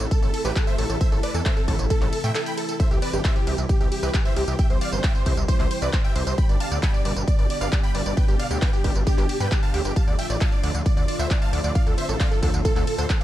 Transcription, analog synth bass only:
0.00 A1
0.22 A1
0.45 A1
0.78 A1
0.90 A1
1.12 A1
1.34 E2
1.68 A1
1.79 A1
2.01 A1
2.24 A2
2.91 C2
3.13 G1
3.47 C2
3.58 C2
3.81 C2
4.03 C2
4.37 C2
4.48 C2
4.70 C2
4.92 G1
5.26 C2
5.37 C2
5.60 C2
5.82 C2
6.15 C2
6.27 C2
6.49 G1
6.71 D2
7.05 G1
7.16 G1
7.39 G1
7.61 G1
7.95 G1
8.06 G1
8.28 G1
8.51 D2
8.84 G1
8.96 G1
9.18 G1
9.40 G2
9.74 D2
9.85 G1
10.07 D2
10.30 A1
10.63 D2
10.74 D2
10.97 D2
11.19 D2
11.53 D2
11.64 D2
11.87 D2
12.09 A1
12.43 D2
12.54 D2
12.76 D2
12.99 D2

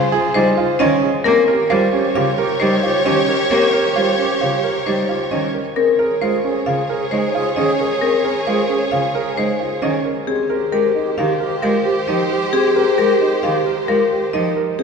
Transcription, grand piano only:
Already playing: F4
0.12 G#4
0.35 D#4
0.57 F4
0.80 C#4
1.02 G#4
1.25 C4
1.48 A#4
1.70 F4
1.93 C#4
2.15 F4
2.38 A#4
2.60 D#4
2.83 F4
3.05 C#4
3.28 A#4
3.51 C4
3.73 A#4
3.96 F4
4.18 C#4
4.41 F4
4.64 A#4
4.86 D#4
5.09 F4
5.31 C#4
5.54 A#4
5.76 C4
5.99 A#4
6.21 F4
6.44 C#4
6.67 F4
6.89 A#4
7.12 D#4
7.35 F4
7.57 C#4
7.79 A#4
8.02 C4
8.24 A#4
8.47 F4
8.69 C#4
8.92 F4
9.15 A#4
9.37 D#4
9.60 F4
9.82 C#4
10.05 A#4
10.27 C4
10.50 A#4
10.72 G4
10.95 D#4
11.18 G4
11.40 A#4
11.62 F4
11.85 G4
12.08 D#4
12.30 A#4
12.53 C4
12.76 A#4
12.98 G4
13.21 D#4
13.43 G4
13.66 A#4
13.88 F4
14.11 G4
14.33 D#4
14.56 A#4
14.79 C4

